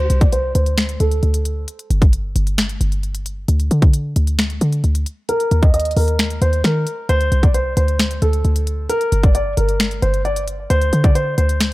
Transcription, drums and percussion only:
0.10 closed hi-hat
0.21 kick, closed hi-hat
0.32 closed hi-hat
0.55 closed hi-hat
0.66 closed hi-hat
0.78 finger snap, snare, closed hi-hat
0.89 closed hi-hat
1.00 closed hi-hat
1.11 closed hi-hat
1.23 closed hi-hat
1.34 closed hi-hat
1.45 closed hi-hat
1.68 closed hi-hat
1.79 closed hi-hat
1.91 closed hi-hat
2.02 kick, closed hi-hat
2.13 closed hi-hat
2.36 closed hi-hat
2.47 closed hi-hat
2.58 finger snap, snare, closed hi-hat
2.69 closed hi-hat
2.81 closed hi-hat
2.92 closed hi-hat
3.03 closed hi-hat
3.15 closed hi-hat
3.26 closed hi-hat
3.48 closed hi-hat
3.60 closed hi-hat
3.71 closed hi-hat
3.82 kick, closed hi-hat
3.93 closed hi-hat
4.16 closed hi-hat
4.27 closed hi-hat
4.39 finger snap, snare, closed hi-hat
4.50 closed hi-hat
4.61 closed hi-hat
4.73 closed hi-hat
4.84 closed hi-hat
4.95 closed hi-hat
5.06 closed hi-hat
5.29 closed hi-hat
5.40 closed hi-hat
5.51 closed hi-hat
5.63 kick, closed hi-hat
5.74 closed hi-hat
5.80 closed hi-hat
5.85 closed hi-hat
5.91 closed hi-hat
5.97 open hi-hat
6.08 closed hi-hat
6.19 finger snap, snare, closed hi-hat
6.30 closed hi-hat
6.42 closed hi-hat
6.53 closed hi-hat
6.64 finger snap, snare, closed hi-hat
6.87 closed hi-hat
7.09 closed hi-hat
7.21 closed hi-hat
7.32 closed hi-hat
7.43 kick, closed hi-hat
7.54 closed hi-hat
7.77 closed hi-hat
7.88 closed hi-hat
7.99 finger snap, snare, closed hi-hat
8.11 closed hi-hat
8.22 closed hi-hat
8.33 closed hi-hat
8.45 closed hi-hat
8.56 closed hi-hat
8.67 closed hi-hat
8.90 closed hi-hat
9.01 closed hi-hat
9.12 closed hi-hat
9.23 kick, closed hi-hat
9.35 closed hi-hat
9.57 closed hi-hat
9.69 closed hi-hat
9.80 finger snap, snare, closed hi-hat
9.91 closed hi-hat
10.02 closed hi-hat
10.14 closed hi-hat
10.25 closed hi-hat
10.36 closed hi-hat
10.48 closed hi-hat
10.70 closed hi-hat
10.82 closed hi-hat
10.93 closed hi-hat
11.04 kick, closed hi-hat
11.15 closed hi-hat
11.38 closed hi-hat
11.49 closed hi-hat
11.60 finger snap, snare, closed hi-hat

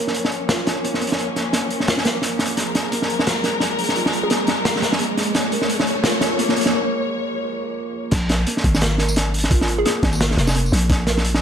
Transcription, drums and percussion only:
0.08 snare
0.14 closed hi-hat
0.25 snare
0.32 closed hi-hat
0.49 snare, closed hi-hat
0.67 snare, closed hi-hat
0.84 closed hi-hat
0.94 snare
1.02 closed hi-hat
1.07 closed hi-hat
1.12 snare
1.18 closed hi-hat
1.36 snare, closed hi-hat
1.53 snare, closed hi-hat
1.70 closed hi-hat
1.80 snare
1.88 snare, closed hi-hat
1.98 snare
2.05 snare, closed hi-hat
2.22 snare, closed hi-hat
2.39 snare, closed hi-hat
2.45 closed hi-hat
2.57 snare, closed hi-hat
2.75 snare, closed hi-hat
2.92 closed hi-hat
3.02 snare
3.10 closed hi-hat
3.19 snare
3.27 snare, closed hi-hat
3.44 snare, closed hi-hat
3.60 snare, closed hi-hat
3.79 closed hi-hat
3.84 closed hi-hat
3.89 snare
3.96 closed hi-hat
4.06 snare
4.13 closed hi-hat
4.30 snare, closed hi-hat
4.47 snare, closed hi-hat
4.65 snare, closed hi-hat
4.76 snare
4.82 snare, closed hi-hat
4.92 snare
4.99 closed hi-hat
5.17 snare, closed hi-hat
5.23 closed hi-hat
5.35 snare, closed hi-hat
5.52 closed hi-hat
5.62 snare
5.69 closed hi-hat
5.80 snare
5.87 closed hi-hat
6.04 snare, closed hi-hat
6.21 snare, closed hi-hat
6.39 closed hi-hat
6.49 snare
6.56 closed hi-hat
6.61 closed hi-hat
6.66 snare
8.11 kick, snare, closed hi-hat, crash
8.29 snare, closed hi-hat
8.47 closed hi-hat
8.57 snare
8.64 kick, closed hi-hat
8.75 snare, tambourine
8.81 snare, closed hi-hat
8.98 snare, closed hi-hat
9.09 tambourine
9.16 snare, closed hi-hat
9.34 closed hi-hat
9.38 closed hi-hat
9.44 snare
9.51 kick, closed hi-hat
9.61 snare
9.68 closed hi-hat
9.85 snare, closed hi-hat
10.03 kick, snare, closed hi-hat
10.13 tambourine
10.20 snare, closed hi-hat
10.31 snare
10.38 snare, closed hi-hat
10.47 snare, tambourine
10.55 closed hi-hat
10.66 tambourine
10.72 snare, closed hi-hat
10.77 closed hi-hat
10.89 kick, snare, closed hi-hat
11.07 snare, closed hi-hat
11.17 snare
11.24 closed hi-hat
11.35 snare

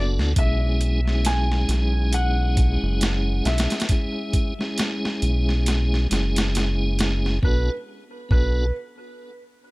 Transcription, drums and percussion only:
0.19 snare
0.36 kick, closed hi-hat
0.81 closed hi-hat
1.08 snare
1.25 snare, closed hi-hat
1.52 snare
1.69 snare, closed hi-hat
2.13 closed hi-hat
2.57 kick, closed hi-hat
3.01 snare, closed hi-hat
3.45 snare, closed hi-hat
3.58 snare, closed hi-hat
3.70 snare, closed hi-hat
3.80 snare, closed hi-hat
3.89 kick, closed hi-hat
4.33 kick, closed hi-hat
4.61 snare
4.78 snare, closed hi-hat
5.05 snare
5.22 closed hi-hat
5.49 snare
5.66 snare, closed hi-hat
5.94 snare
6.11 snare, closed hi-hat
6.36 snare, closed hi-hat
6.55 snare, closed hi-hat
6.99 snare, closed hi-hat
7.26 snare
7.43 kick
8.31 kick

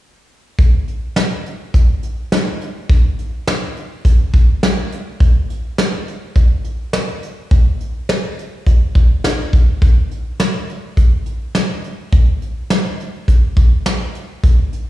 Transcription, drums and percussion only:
0.58 kick, closed hi-hat
0.88 closed hi-hat
1.16 snare, closed hi-hat
1.46 closed hi-hat
1.74 kick, closed hi-hat
2.03 closed hi-hat
2.32 snare, closed hi-hat
2.61 closed hi-hat
2.89 kick, closed hi-hat
3.19 closed hi-hat
3.47 snare, closed hi-hat
3.77 closed hi-hat
4.05 kick, closed hi-hat
4.34 kick, closed hi-hat
4.63 snare, closed hi-hat
4.92 closed hi-hat
5.20 kick, closed hi-hat
5.50 closed hi-hat
5.78 snare, closed hi-hat
6.08 closed hi-hat
6.36 kick, closed hi-hat
6.64 closed hi-hat
6.93 snare, closed hi-hat
7.23 closed hi-hat
7.51 kick, closed hi-hat
7.80 closed hi-hat
8.09 snare, closed hi-hat
8.39 closed hi-hat
8.67 kick, closed hi-hat
8.95 kick, closed hi-hat
9.24 snare, closed hi-hat
9.53 kick, closed hi-hat
9.82 kick, closed hi-hat
10.11 closed hi-hat
10.39 snare, closed hi-hat
10.69 closed hi-hat
10.97 kick, closed hi-hat
11.26 closed hi-hat
11.55 snare, closed hi-hat
11.84 closed hi-hat
12.12 kick, closed hi-hat
12.42 closed hi-hat
12.70 snare, closed hi-hat
13.00 closed hi-hat
13.28 kick, closed hi-hat
13.57 kick, closed hi-hat
13.86 snare, closed hi-hat
14.15 closed hi-hat
14.43 kick, closed hi-hat
14.73 closed hi-hat

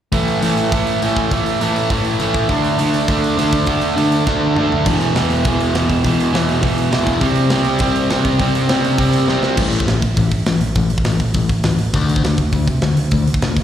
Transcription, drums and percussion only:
0.12 kick, open hi-hat
0.28 open hi-hat
0.42 open hi-hat
0.57 open hi-hat
0.72 kick, open hi-hat
0.87 open hi-hat
1.02 open hi-hat
1.16 kick, open hi-hat
1.31 kick, open hi-hat
1.46 open hi-hat
1.61 open hi-hat
1.76 open hi-hat
1.90 kick, open hi-hat
2.05 open hi-hat
2.20 open hi-hat
2.34 kick, open hi-hat
2.49 kick, open hi-hat
2.64 open hi-hat
2.79 open hi-hat
2.94 open hi-hat
3.08 kick, open hi-hat
3.24 open hi-hat
3.39 open hi-hat
3.52 kick, open hi-hat
3.66 kick, open hi-hat
3.82 open hi-hat
3.98 open hi-hat
4.12 open hi-hat
4.27 kick, snare
4.56 mid tom
4.72 floor tom
4.86 kick, open hi-hat, crash
5.01 open hi-hat
5.16 snare, open hi-hat
5.30 open hi-hat
5.45 kick, open hi-hat
5.61 open hi-hat
5.75 snare, open hi-hat
5.90 kick, open hi-hat
6.05 kick, open hi-hat
6.20 open hi-hat
6.35 snare, open hi-hat
6.49 open hi-hat
6.63 kick, open hi-hat
6.78 open hi-hat
6.93 snare, open hi-hat
7.07 kick, open hi-hat
7.21 kick, open hi-hat
7.36 open hi-hat
7.50 snare, open hi-hat
7.65 open hi-hat
7.79 kick, open hi-hat
7.96 open hi-hat
8.10 snare, open hi-hat
8.25 kick, open hi-hat
8.40 kick, open hi-hat
8.55 open hi-hat
8.69 snare, open hi-hat
8.85 open hi-hat
8.98 kick, open hi-hat
9.13 open hi-hat
9.28 snare
9.43 snare
9.57 kick, crash
9.73 open hi-hat
9.80 kick
9.88 snare, open hi-hat
10.02 kick, open hi-hat
10.17 kick, open hi-hat
10.31 kick, open hi-hat
10.46 snare, open hi-hat
10.61 open hi-hat
10.75 kick, open hi-hat
10.90 open hi-hat
10.98 kick
11.05 snare, open hi-hat
11.20 kick, open hi-hat
11.34 kick, open hi-hat
11.49 kick, open hi-hat
11.64 snare, open hi-hat
11.78 open hi-hat
11.93 kick, open hi-hat
12.10 open hi-hat
12.16 kick
12.24 snare, open hi-hat
12.38 kick, open hi-hat
12.53 kick, open hi-hat
12.68 kick, open hi-hat
12.82 snare, open hi-hat
12.97 open hi-hat
13.11 kick, open hi-hat
13.27 open hi-hat
13.34 kick
13.42 snare, open hi-hat
13.57 kick, open hi-hat

